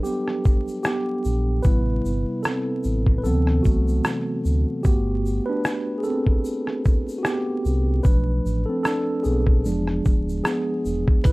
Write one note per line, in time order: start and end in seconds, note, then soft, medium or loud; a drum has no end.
0.00 1.67 F#3 medium
0.00 1.65 G3 soft
0.00 1.67 D4 medium
0.00 0.03 G4 medium
0.00 0.82 G4 medium
0.00 1.67 A4 medium
0.00 1.62 B4 medium
0.05 0.81 B3 medium
0.05 shaker medium
0.28 cross-stick soft
0.45 kick medium
0.45 shaker soft
0.68 shaker soft
0.83 1.62 B3 medium
0.83 1.67 G4 medium
0.83 cross-stick loud
0.83 shaker medium
1.25 1.60 A#1 medium
1.25 shaker medium
1.62 2.00 A1 medium
1.62 2.20 C3 soft
1.62 2.20 G3 soft
1.62 2.21 B3 medium
1.62 2.41 E4 medium
1.62 2.40 B4 medium
1.62 kick loud
1.62 shaker medium
2.05 2.25 G1 medium
2.05 shaker soft
2.43 3.15 C4 medium
2.43 3.20 A4 medium
2.43 cross-stick loud
2.43 shaker medium
2.84 3.27 A1 medium
2.84 shaker soft
3.06 kick medium
3.18 3.25 B4 medium
3.24 3.60 D2 medium
3.24 3.81 C3 medium
3.24 3.81 E3 medium
3.24 3.81 F#3 soft
3.24 3.81 B3 medium
3.24 3.63 C4 medium
3.24 3.66 A4 medium
3.24 shaker medium
3.47 cross-stick soft
3.63 4.01 C2 medium
3.63 4.82 A3 medium
3.63 4.84 F#4 medium
3.63 kick medium
3.63 shaker soft
3.88 shaker soft
4.05 cross-stick loud
4.05 shaker medium
4.45 4.65 D2 loud
4.45 shaker medium
4.83 5.40 G1 loud
4.83 6.01 A3 soft
4.83 5.45 B3 medium
4.83 6.01 F#4 medium
4.83 5.49 G4 medium
4.83 kick loud
4.83 shaker medium
5.26 shaker soft
5.46 5.96 D4 medium
5.46 6.00 B4 medium
5.65 cross-stick loud
5.65 shaker medium
5.98 6.05 G#4 medium
6.04 7.16 C4 medium
6.04 7.22 A4 medium
6.04 shaker soft
6.26 kick medium
6.45 shaker medium
6.67 cross-stick soft
6.85 kick medium
6.85 shaker soft
7.09 shaker soft
7.18 7.25 F#4 medium
7.23 8.02 B3 medium
7.23 8.00 G4 medium
7.23 cross-stick loud
7.23 shaker medium
7.65 8.00 C2 medium
7.65 shaker medium
8.03 8.40 B1 loud
8.03 9.61 F3 medium
8.03 9.62 A3 soft
8.03 8.65 D4 medium
8.03 8.69 B4 medium
8.03 kick loud
8.03 shaker medium
8.45 8.65 A1 loud
8.45 shaker soft
8.66 8.85 C4 medium
8.66 8.82 A4 medium
8.83 9.04 D4 medium
8.83 9.02 A4 medium
8.83 cross-stick loud
8.83 shaker medium
9.23 9.66 B1 medium
9.23 10.42 B3 medium
9.23 10.42 G#4 medium
9.23 shaker soft
9.47 kick medium
9.65 10.00 E1 loud
9.65 10.20 F3 medium
9.65 10.21 G#3 soft
9.65 10.21 D4 medium
9.65 shaker medium
9.87 cross-stick soft
10.05 10.41 D1 loud
10.05 kick medium
10.05 shaker soft
10.29 shaker soft
10.44 11.22 B3 medium
10.44 11.27 G#4 medium
10.44 cross-stick loud
10.44 shaker medium
10.85 11.05 E1 medium
10.85 shaker medium
11.08 kick medium
11.24 11.32 A1 loud
11.24 11.32 E4 medium
11.24 11.32 B4 loud
11.24 kick loud
11.24 closed hi-hat loud
11.24 shaker medium